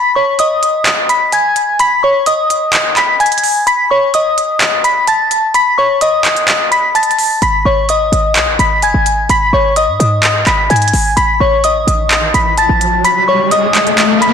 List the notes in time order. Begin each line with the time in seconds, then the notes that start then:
Already playing: B6
0.15 C#5 C#6
0.39 D#5 D#6, closed hi-hat
0.63 closed hi-hat
0.85 clap, closed hi-hat
1.09 B5 B6, closed hi-hat
1.32 G#5 G#6, closed hi-hat
1.56 closed hi-hat
1.79 B5 B6, closed hi-hat
2.03 C#5 C#6
2.26 D#5 D#6, closed hi-hat
2.50 closed hi-hat
2.73 clap, closed hi-hat
2.97 B5 B6, clap, closed hi-hat
3.20 G#5 G#6, closed hi-hat
3.26 closed hi-hat
3.32 closed hi-hat
3.38 closed hi-hat
3.44 open hi-hat
3.67 B5 B6, closed hi-hat
3.90 C#5 C#6
4.14 D#5 D#6, closed hi-hat
4.38 closed hi-hat
4.60 clap, closed hi-hat
4.84 B5 B6, closed hi-hat
5.07 A5 A6, closed hi-hat
5.31 closed hi-hat
5.54 B5 B6, closed hi-hat
5.78 C#5 C#6
6.01 D#5 D#6, closed hi-hat
6.25 clap, closed hi-hat
6.37 closed hi-hat
6.48 clap, closed hi-hat
6.72 B5 B6, closed hi-hat
6.95 A5 A6, closed hi-hat
7.03 closed hi-hat
7.11 closed hi-hat
7.19 open hi-hat
7.42 G#1 B5 B6, closed hi-hat
7.65 G#1 C#5 C#6
7.89 D#5 D#6, closed hi-hat
8.12 G#1, closed hi-hat
8.35 B1, clap, closed hi-hat
8.47 G#1
8.59 G#1 B5 B6, closed hi-hat
8.82 F#1 G#5 G#6, closed hi-hat
8.94 G#1
9.06 closed hi-hat
9.29 G#1 B5 B6, closed hi-hat
9.53 G#1 C#5 C#6
9.76 D#5 D#6, closed hi-hat
9.88 G#2
10.00 G#2, closed hi-hat
10.23 clap, closed hi-hat
10.47 G#1 B5 B6, clap, closed hi-hat
10.70 G#2 G#5 G#6, closed hi-hat
10.76 closed hi-hat
10.82 closed hi-hat
10.88 closed hi-hat
10.94 G#1, open hi-hat
11.17 A1 B5 B6, closed hi-hat, riser
11.40 A1 C#5 C#6
11.64 D#5 D#6, closed hi-hat
11.87 A1, closed hi-hat
12.10 clap, closed hi-hat
12.34 A1 B5 B6, closed hi-hat
12.58 A5 A6, closed hi-hat
12.69 A1
12.81 closed hi-hat
13.05 B5 B6, closed hi-hat
13.28 C#5 C#6
13.51 D#5 D#6, closed hi-hat
13.75 clap, closed hi-hat
13.87 closed hi-hat
13.98 clap, closed hi-hat
14.22 B5 B6, closed hi-hat